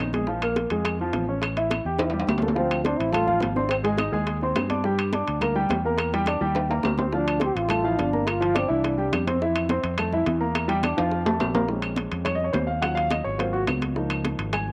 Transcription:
Already playing: A3
0.00 A#1
0.13 G#3 G#4, high bongo, high conga, high timbale
0.27 F3 F4, high bongo, high conga
0.41 A#3 A#4, high conga, high timbale, claves
0.56 high bongo, high conga, high timbale
0.70 F2 G#3 G#4, high conga, high timbale
0.85 high bongo, high conga, high timbale, claves
1.00 F3 F4, high conga
1.13 A1, high bongo, low bongo, high conga, high timbale
1.28 C#4 C#5
1.42 high bongo, high conga, high timbale, claves
1.56 E4 E5, high bongo, high conga, high timbale
1.70 high bongo, high conga, high timbale, claves
1.85 E2 G4 G5, high conga
1.99 E4 E5, high bongo, high conga, high timbale
2.10 G3 G4, high timbale
2.14 high conga
2.20 high timbale
2.27 D2, low bongo, high conga, low timbale, claves
2.38 low timbale
2.42 A3 A#3 A4, low bongo, high conga
2.48 low timbale
2.55 F3 C4 F4 F5, high bongo, high conga
2.71 high conga, high timbale, claves
2.84 C4 D4 C5 C6, high bongo, high conga, high timbale
2.98 A1 E4, high conga, high timbale
3.12 A3 F4 A4 A5, high bongo, high conga, low conga, high timbale, claves
3.27 F3 F4 F5, high conga, low conga
3.40 G#1, high bongo, low bongo, high conga, high timbale, low timbale
3.55 C4 D4 C5 C6, high conga
3.69 C4, high bongo, high conga, high timbale, claves
3.83 G#3 G#4 G#5, high bongo, high conga, high timbale
3.98 D#4 D#5 D#6, high bongo, high conga, high timbale, claves
4.12 D#2 G#3 G#4 G#5, high conga
4.27 high bongo, high conga, high timbale
4.41 C4 C5 C6, high bongo, high conga
4.55 G2, high bongo, low bongo, high conga, high timbale, low timbale, claves
4.70 D4 D5 D6, high bongo, high conga, high timbale
4.84 G3 G4 G5, high bongo, high conga
4.98 high conga, high timbale, claves
5.13 D4 D5 D6, high bongo, high conga, high timbale
5.26 D2, high conga, high timbale
5.41 A#3 A#4 A#5, high bongo, high conga, low conga, high timbale, claves
5.55 G3 G4 G5, high conga
5.69 E2, high bongo, low bongo, high conga, high timbale, low timbale
5.85 A#3 A#4 A#5
5.98 high bongo, high conga, high timbale, claves
6.12 G3 G4 G5, high bongo, high conga, high timbale
6.26 D4 D5 D6, high bongo, high conga, high timbale, claves
6.41 D#2 G3 G4 G5, high conga
6.55 high bongo, high conga, high timbale
6.69 A#3 A#4 A#5, high bongo, high conga, high timbale
6.83 D2, high bongo, low bongo, high conga, low timbale, claves
6.98 C4 C5 C6, high bongo, high conga, low timbale
7.12 F3 D4 F4 F5, high bongo, high conga
7.27 high conga, high timbale, claves
7.40 C4 C5 C6, high bongo, high conga, high timbale
7.44 G4
7.55 A1 F4, high conga, high timbale
7.69 A3 A4 A5, high bongo, high conga, low conga, high timbale, claves
7.83 F3 E4 F4 F5, high conga
7.98 G1 D4, high bongo, low bongo, high conga, high timbale
8.13 A#3 A#4 A#5, high conga
8.27 F4, high bongo, high conga, high timbale, claves
8.40 F3 F4 F5, high bongo, high conga, high timbale
8.54 C4 D4 D5 D6, high bongo, high conga, high timbale, claves
8.68 C2 E3 D4 E4 E5, high conga
8.84 high bongo, high conga, high timbale
8.97 G3 G4 G5, high bongo, high conga
9.12 F2, high bongo, low bongo, high conga, high timbale, claves
9.27 C4 C5 C6, high bongo, high conga, high timbale
9.42 E3 E4 E5, high bongo
9.55 high conga, high timbale, claves
9.69 C4 C5 C6, high bongo, high conga, high timbale
9.84 F2, high conga, high timbale
9.98 A3 A4 A5, high bongo, high conga, low conga, high timbale, claves
10.12 E3 E4 E5, high conga, low conga
10.26 E2, high bongo, low bongo, high conga, high timbale
10.41 A#3 A#4 A#5
10.55 high bongo, high conga, high timbale, claves
10.68 G3 G4 G5, high bongo, high conga, high timbale
10.83 D4 D5 D6, high bongo, high conga, high timbale, claves
10.97 F2 F3 F4 F5, high conga, high timbale
11.12 high bongo, high conga
11.25 A3 A4 A5, high bongo, high conga, low timbale
11.40 A#1, low bongo, high conga, low timbale, claves
11.54 A#3 A#4 A#5, low bongo, high conga, low timbale
11.69 G#3 C4 C#4, high bongo, high conga
11.82 high conga, high timbale, claves
11.96 high bongo, high conga, high timbale
12.11 F2, high conga, high timbale
12.25 C#5, high bongo, high conga, low conga, high timbale, claves
12.35 D#5
12.40 high conga
12.44 C#5
12.53 D#2 C5, high bongo, low bongo, high conga, high timbale, low timbale
12.67 F5
12.81 F#3 C#4 F4 F#5, high bongo, high conga, high timbale, claves
12.95 F5, high bongo, high conga, high timbale
13.11 D#5, high bongo, high conga, high timbale, claves
13.25 G#1 C#5, high conga
13.38 F#3 A#3 C4 F4 C5, high bongo, high conga, high timbale
13.53 F#4, high bongo, high conga
13.67 C#2, high bongo, low bongo, high conga, high timbale, claves
13.82 high bongo, high conga, high timbale
13.95 F3 A#3 D#4, high bongo, high conga
14.10 high conga, high timbale, claves
14.25 high bongo, high conga, high timbale
14.38 G#1, high conga, high timbale
14.53 G#5, high bongo, high conga, low conga, high timbale, claves
14.68 high conga

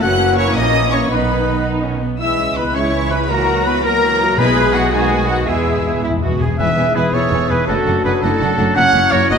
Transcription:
0.01 F#1 E3 A#3 C#4 E4 F#4 F#5 F#6
0.38 C#4 C#5 C#6
0.55 A#1 D#5 D#6
0.92 C#4 C#5 C#6
1.10 B1 D#3 B3 D#4 B4 B5
1.65 D#4
1.83 C#4
2.01 B3
2.20 C#2 E3 G#3 E4 E5 E6
2.38 G#3 C#4
2.56 E3 B3 E4 B4 B5
2.74 E3 G#3 C#4 E4 C#5 C#6
2.96 E3 E4
3.10 G#3 B3 C#4 B4 B5
3.28 E3 F#3 A#3 E4 F#4 A#4 A#5
3.49 F#3 F#4
3.65 E3 B3 E4 B4 B5
3.83 E3 F#3 A#3 F#4 A#4 A#5
4.02 E3 E4
4.21 F#3 F#4
4.38 B1 B2 E3 G#3 B3 E4 G#4 B4 B5
4.56 G#3 G#4
4.73 F#3 B3 E4 F#4 F#5
4.91 D#3 G#3 B3 D#4 F#4 G#4 G#5
5.10 A3 F#4
5.29 F#3 B3 D#4 F#4 F#5
5.47 E2 E3 G#3 B3 E4 G#4 E5
5.56 E2
5.64 E2 G#3 E4
5.71 E2
5.78 E2
5.85 E2 E3 B3
5.94 E2
6.02 E2 G#3 E4
6.10 E2
6.17 E2
6.22 E2 E3 B3 F#4
6.33 E2
6.40 E2 G#3 E4 G#4
6.48 E2
6.57 E1 E2 G#2 E3 B3 E4 G#4 B4 E5 G#5
6.77 E1 E2 B3 E4 G#5
6.95 E1 E2 B3 E4 G#4 B4 G#5
7.13 E1 E2 B3 E4 A4 C#5 G#5
7.31 E1 E2 B3 E4 G#5
7.49 E1 E2 B3 E4 G#4 B4 G#5
7.67 F#1 F#2 F#3 A3 D4 F#4 A4 F#5
7.86 F#1 F#2 A3 D4 F#5
8.04 F#1 F#2 A3 D4 G#4 B4 F#5
8.21 F#1 F#2 A3 D4 E4 F#4 A4 F#5
8.41 F#1 F#2 A3 D4 F#5
8.58 F#1 F#2 A3 D4 F#5
8.75 F#1 F#2 A#2 A#3 C#4 E4 C#5 F#5
8.94 F#1 F#2 A#3 E4 F#5
9.11 F#1 F#2 A#3 E4 A#4 C#5 F#5
9.28 F#1 F#2 A#3 E4 B4 D#5 F#5
9.33 F#4

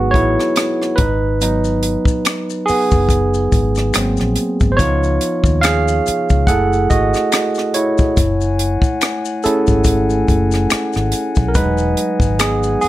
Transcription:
Already playing: G#1 F#3 G#3 B3 D#4 F#4 G#4 B4
0.11 A1 C#5, kick
0.15 E4, closed hi-hat
0.40 cross-stick
0.56 cross-stick, closed hi-hat
0.82 cross-stick
0.96 G#1 B4, kick, closed hi-hat
1.00 D#4
1.41 F#3 B3 D#4, closed hi-hat, maracas
1.64 maracas
1.83 closed hi-hat
2.05 muted fingered electric bass stroke, kick, maracas
2.25 finger snap, cross-stick, closed hi-hat, maracas
2.50 maracas
2.66 B3 G#4, muted fingered electric bass stroke, open hi-hat, maracas
2.91 F#1, kick, maracas
3.09 kick, closed hi-hat, maracas
3.34 maracas
3.52 G#1, kick, closed hi-hat, maracas
3.75 cross-stick, maracas
3.94 G#1 F#3 A#3 C4, finger snap, cross-stick, closed hi-hat, maracas
4.17 A#1, cross-stick, maracas
4.36 closed hi-hat, maracas
4.60 G#1, kick, maracas
4.72 C5
4.77 C#2 F3 B3 D#4 F4 C#5, kick, closed hi-hat, maracas
5.03 maracas
5.21 closed hi-hat, maracas
5.44 D#2, kick, maracas
5.61 G#4 F5, finger snap, cross-stick, closed hi-hat, maracas
5.88 maracas
6.06 muted fingered electric bass stroke, closed hi-hat, maracas
6.29 C#2, kick, maracas
6.47 F#1 A3 E4 G#4 A4 F#5, kick, closed hi-hat, maracas
6.73 maracas
6.90 G#1 F#4 D#5, kick, closed hi-hat, maracas
7.14 cross-stick, maracas
7.32 finger snap, cross-stick, closed hi-hat, maracas
7.55 cross-stick, maracas
7.74 E4 C#5, closed hi-hat
7.98 kick, maracas
8.17 F#1 A3 F#5 G#5, kick, closed hi-hat, maracas
8.41 maracas
8.59 closed hi-hat
8.82 muted fingered electric bass stroke, kick, maracas
9.01 finger snap, cross-stick, closed hi-hat, maracas
9.25 maracas
9.43 A3 C#4 E4 G#4 A4, muted fingered electric bass stroke, closed hi-hat, maracas
9.67 G#1, kick, maracas
9.84 kick, closed hi-hat, maracas
10.10 maracas
10.28 F#1, kick, closed hi-hat, maracas
10.52 cross-stick, maracas
10.70 finger snap, muted fingered electric bass stroke, cross-stick, closed hi-hat, maracas
10.93 G#1, cross-stick, maracas
11.12 closed hi-hat, maracas
11.35 B1, kick, maracas
11.48 A#4
11.55 E1 F#3 G#3 D#4 B4 D#5, kick, closed hi-hat, maracas
11.78 maracas
11.97 closed hi-hat
12.20 G#1, kick, maracas
12.39 B3 G#4, finger snap, cross-stick, closed hi-hat, maracas
12.63 maracas
12.81 B3 G#4, muted fingered electric bass stroke, open hi-hat, maracas

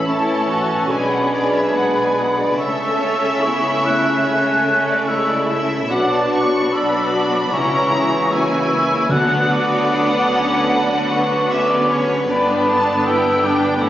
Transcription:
Already playing: A1 A2 E3 C#4
0.07 E3 C#4 E4 A4 C#5 A5 C#6
0.49 F#4
0.90 B1 B2 G#3 D4 G#4 B4 D5 G#5 B5
1.12 F#5
1.32 D5
1.54 E5
1.74 G#3 F#5
1.97 G#5
2.17 F#5
2.38 D5
2.57 C#2 C#3 A3 C#4 A4 C#5 E5 E6
3.01 C#4
3.42 B3 E4 G#4 C#5 C#6
3.85 A3 F#6
4.26 C#4 E5
4.68 C#4
4.89 D5
5.07 G#3 E4 A4 C#5 E6
5.28 D5
5.49 E5
5.89 B1 B2 F#3 D4 F#4 B4 D5 F#5 D6
6.13 A5
6.34 C#6
6.72 F#3 D4 F#4 B4 D5 B5 E6
7.14 D6
7.52 C#2 C#3 E3 C#4 E4 C#5 E5 A#5 C#6
7.94 G#3
8.31 A#3 E4 F#4 E5 G#5 E6
8.71 E4
9.08 D2 D3 F#3 B3 D4 F#4 B4 D5 F#5 F#6
9.51 B3 D6
9.93 D4
10.33 C#4
10.71 B3 D4 F#4 D5 B5
11.11 A4 C#6
11.50 C#4 G#4 B4 E5 D6
11.69 D5
11.88 C#5
12.27 G1 G2 D3 B3 D4 G4 B4 D5 B5
12.31 D4
12.67 A5
13.05 D3 D4 E4 G4 B4 G5 E6
13.44 D4 D6
13.81 A1 A2 E3 A3 C#4 E4 A4 C#5 F#5 B5

